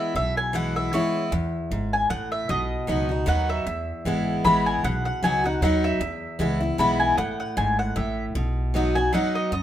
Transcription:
Already playing: E3 G#3 B3 E4
0.00 E5
0.15 B1 B2 E5
0.37 G#5
0.53 E3 G#3 B3 E4 F#5
0.76 E5
0.93 E3 G#3 B3 E4 C#5
1.32 E2
1.71 G#1 G#2
1.93 G#5
2.10 A1 A2 F#5
2.32 E5
2.49 B1 B2 D#5
2.87 C#2 F#3 B3 D#4 F#4
3.09 D#4 F#4
3.26 D#2 F#3 B3 D#4 F#4 F#5
3.49 E5
3.66 E2
4.05 G#1 E3 G#3 B3 E4
4.44 A1 E3 G#3 B3 E4 B5
4.66 G#5
4.83 B1 B2 F#5
5.05 F#5
5.22 C#2 F#3 B3 D#4 F#4 G#5
5.44 D#4 F#4 F#5
5.61 D#2 F#3 B3 D#4 F#4 F#5
5.84 E5
6.00 E2
6.39 C#2 E3 G#3 B3 E4
6.60 B3 E4
6.78 B1 E3 G#3 B3 E4 B5
7.00 G#5
7.18 A1 A2 F#5
7.40 F#5
7.57 G#1 G#2 G#5
7.79 F#5
7.96 A1 A2 E5
8.35 B1 B2
8.74 F#3 B3 D#4 F#4
8.95 D#4 F#4 G#5
9.13 F#3 B3 D#4 F#4 F#5
9.35 D#5
9.52 F#2 D#5

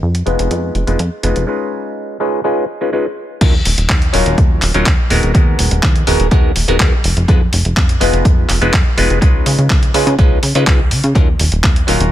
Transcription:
0.02 F2
0.15 closed hi-hat
0.26 F1 G#3 B3 D#4 F4 B4, closed hi-hat
0.39 F1, closed hi-hat
0.51 F2, closed hi-hat
0.75 F1, closed hi-hat
0.87 F1 G#3 B3 D#4 F4 B4, closed hi-hat
0.99 F2, closed hi-hat
1.23 F1 G#3 B3 D#4 F4 B4, closed hi-hat
1.36 F1, closed hi-hat
1.47 G#3 C#4 D#4 F4 B4
2.20 G#3 C#4 D#4 F4 B4
2.44 G#3 C#4 D#4 F4 B4
2.81 G#3 C#4 D#4 F4 B4
2.93 G#3 C#4 D#4 F4 B4
3.41 D#2 F#3 C#4 D#4 F4 A#4, kick, closed hi-hat, crash
3.65 D#1, open hi-hat
3.78 D#1, closed hi-hat
3.89 D#2, kick, clap
4.02 closed hi-hat
4.13 D#1 F#3 C#4 D#4 F4 A#4, open hi-hat
4.26 D#1, closed hi-hat
4.38 D#2, kick, closed hi-hat
4.62 D#1, clap, open hi-hat
4.74 D#1 F#3 C#4 D#4 F4 A#4, closed hi-hat
4.86 D#2, kick, clap, closed hi-hat
5.10 D#1 G#3 B3 D#4 F#4 A#4, open hi-hat
5.23 D#1, closed hi-hat
5.34 D#2 G#3 B3 D#4 F#4 A#4, kick, closed hi-hat
5.59 D#1, open hi-hat
5.71 D#1, closed hi-hat
5.83 D#2, kick, clap
5.96 closed hi-hat
6.07 D#1 G#3 B3 D#4 F#4 A#4, open hi-hat
6.20 D#1, closed hi-hat
6.31 D#2 G#3 B3 D#4 F#4 A#4, kick, closed hi-hat
6.56 D#1, open hi-hat
6.68 D#1 G#3 B3 D#4 F#4 A#4, closed hi-hat
6.80 D#2 G#3 B3 D#4 F#4 A#4, kick, clap, closed hi-hat
7.04 F1, open hi-hat
7.17 F1, closed hi-hat
7.28 F2 G#3 B3 D#4 F4 B4, kick, closed hi-hat
7.53 F1, open hi-hat
7.65 F1, closed hi-hat
7.77 F2, kick, clap
7.89 closed hi-hat
8.00 F1 G#3 B3 D#4 F4 B4, open hi-hat
8.13 F1, closed hi-hat
8.25 F2, kick, closed hi-hat
8.49 F1, clap, open hi-hat
8.61 F1 G#3 B3 D#4 F4 B4, closed hi-hat
8.73 F2, kick, clap, closed hi-hat
8.97 F1 G#3 B3 D#4 F4 B4, open hi-hat
9.10 F1, closed hi-hat
9.21 C#2 G#3 C#4 D#4 F4 B4, kick, closed hi-hat
9.46 C#3, open hi-hat
9.58 C#3, closed hi-hat
9.70 C#2, kick, clap
9.83 closed hi-hat
9.94 C#3 G#3 C#4 D#4 F4 B4, open hi-hat
10.07 C#3, closed hi-hat
10.18 C#2 G#3 C#4 D#4 F4 B4, kick, closed hi-hat
10.43 C#3, open hi-hat
10.55 C#3 G#3 C#4 D#4 F4 B4, closed hi-hat
10.67 C#2 G#3 C#4 D#4 B4, kick, clap, closed hi-hat
10.91 C#3, open hi-hat
11.04 C#3, closed hi-hat
11.15 D#2 F#3 C#4 D#4 F4 A#4, kick, closed hi-hat
11.39 D#1, open hi-hat
11.52 D#1, closed hi-hat
11.64 D#2, kick, clap
11.76 closed hi-hat
11.87 D#1 F#3 C#4 D#4 F4 A#4, open hi-hat
12.00 D#1, closed hi-hat

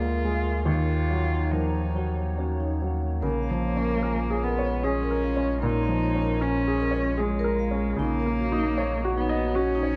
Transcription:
Already playing: D2 F#3 G#3 A#3 F4 G#4 A#4
0.02 A#4
0.23 G#3 G#5
0.45 G#5
0.65 D#2 D#4 F4 C#5
1.10 F#3 C#5
1.31 D#4
1.51 F3 D#4 A#4
1.75 C#5
1.95 F#3 D#4
2.17 C#5
2.38 C#4 F#4
2.60 D#4
2.81 F#3 C#5
3.02 C#5
3.22 A#1 C#3 G#3 A#3 F4 A#4 C#5
3.42 F5
3.51 F3
3.63 C#5
3.77 C#4
3.83 A#4
4.03 A#4 G#5
4.30 G#4
4.43 B3 A#4
4.59 C#5
4.64 C#5
4.83 C#4 G#4 C#5
5.03 A#4
5.11 A#4
5.23 F5
5.37 C#4
5.44 C#5
5.62 A#2 D#4 A#4
5.83 F5
5.89 F3
6.03 C#5
6.15 C#4
6.22 A#4
6.41 C#4 A#4 G#5
6.67 G#4
6.80 A#4
6.91 C#5
7.01 C#5
7.18 G#3 G#4 C#5
7.39 A#4
7.44 A#4
7.59 F5
7.71 C#4
7.78 C#5
7.96 A#1 C#3 F#3 A#3 D#4 C#5
8.20 A#4
8.26 A#3
8.40 F#4
8.52 D#4
8.59 D#4
8.78 C#5
9.05 F#4
9.17 B3 D#4
9.29 D#5
9.37 F#4
9.55 C#4 F#4
9.75 D#4
9.83 C#5

